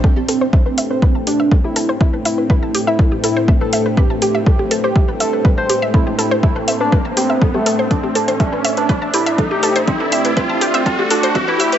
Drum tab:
HH |--o---o---o---o-|--o---o---o---o-|--o---o---o---o-|--o---o---o---o-|
BD |o---o---o---o---|o---o---o---o---|o---o---o---o---|o---o---o---o---|

HH |x-oxx-oxx-oxx-ox|x-oxx-oxx-oxx-ox|
BD |o---o---o---o---|o---o---o---o---|